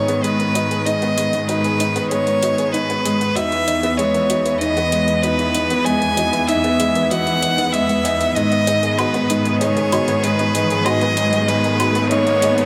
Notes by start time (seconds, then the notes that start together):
Already playing: G#2 D#3 G#3 B3 D#4 G#4 C#5
0.08 B3 G#4, closed hi-hat
0.23 G#3 G#4 B4, closed hi-hat
0.39 B3 A#4, closed hi-hat
0.55 D#4 F#4, closed hi-hat
0.71 G#4 B4, closed hi-hat
0.86 D#4 D#5, closed hi-hat
1.02 B3 G#4, closed hi-hat
1.18 G#3 G#4, closed hi-hat
1.33 B3 A#4, closed hi-hat
1.48 D#4 F#4 B4, closed hi-hat
1.64 G#4 B4, closed hi-hat
1.80 D#4, closed hi-hat
1.96 B3 G#4, closed hi-hat
2.10 G#3 G#4 C#5, closed hi-hat
2.27 B3 A#4, closed hi-hat
2.43 D#4 F#4, closed hi-hat
2.58 G#4 B4, closed hi-hat
2.73 D#4 B4, closed hi-hat
2.89 B3 G#4, closed hi-hat
3.05 G#3 G#4, closed hi-hat
3.21 B3 A#4, closed hi-hat
3.35 E2 E3 D#4 F#4 E5, closed hi-hat
3.52 E4 B4, closed hi-hat
3.67 D#4, closed hi-hat
3.83 B3 G#4, closed hi-hat
3.98 G#3 G#4 C#5, closed hi-hat
4.14 B3 A#4, closed hi-hat
4.30 D#4 F#4, closed hi-hat
4.45 E4 B4, closed hi-hat
4.60 D#4 D#5, closed hi-hat
4.77 B3 G#4, closed hi-hat
4.92 G#3 G#4, closed hi-hat
5.08 B3 A#4, closed hi-hat
5.23 D#4 F#4 B4, closed hi-hat
5.39 E4 B4, closed hi-hat
5.55 D#4, closed hi-hat
5.70 B3 G#4, closed hi-hat
5.85 G#3 G#4 G#5, closed hi-hat
6.01 B3 A#4, closed hi-hat
6.17 D#4 F#4, closed hi-hat
6.33 E4 B4, closed hi-hat
6.47 D#4 E5, closed hi-hat
6.64 B3 G#4, closed hi-hat
6.80 G#3 G#4, closed hi-hat
6.95 B3 A#4, closed hi-hat
7.10 D#4 F#4 F#5, closed hi-hat
7.27 E4 B4, closed hi-hat
7.42 D#4 D#5, closed hi-hat
7.58 B3 D#4, closed hi-hat
7.73 G#3 D#5 E5, closed hi-hat
7.89 G#3 B3, closed hi-hat
8.05 D#4 G#5, closed hi-hat
8.20 E4 B4, closed hi-hat
8.35 G#2 D#3 G#3 D#4 D#5, closed hi-hat, riser
8.52 B3 D#5, closed hi-hat
8.67 D#4 G#4, closed hi-hat
8.77 G#4
8.83 G#4 A#4, closed hi-hat
8.98 D#4 F#4 B4, closed hi-hat, low woodblock
9.14 B3 B4, closed hi-hat
9.30 G#3 D#4, closed hi-hat
9.45 B3 D#5, closed hi-hat
9.60 D#4 G#4 C#5, closed hi-hat
9.77 G#4 A#4, closed hi-hat
9.92 D#4 F#4, closed hi-hat, low woodblock
10.08 B3 B4, closed hi-hat
10.23 G#3 D#4 B4, closed hi-hat
10.39 B3 D#5, closed hi-hat
10.55 D#4 G#4, closed hi-hat
10.70 G#4 A#4, closed hi-hat
10.85 D#4 F#4 D#5, closed hi-hat, low woodblock
11.01 B3 B4, closed hi-hat
11.17 G#3 D#4, closed hi-hat
11.33 B3 D#5, closed hi-hat
11.48 D#4 G#4 B4, closed hi-hat
11.64 G#4 A#4, closed hi-hat
11.80 D#4 F#4, closed hi-hat, low woodblock
11.95 B3 B4, closed hi-hat
12.10 G#3 D#4 C#5, closed hi-hat
12.27 B3 D#5, closed hi-hat
12.42 D#4 G#4, closed hi-hat
12.58 G#4 A#4, closed hi-hat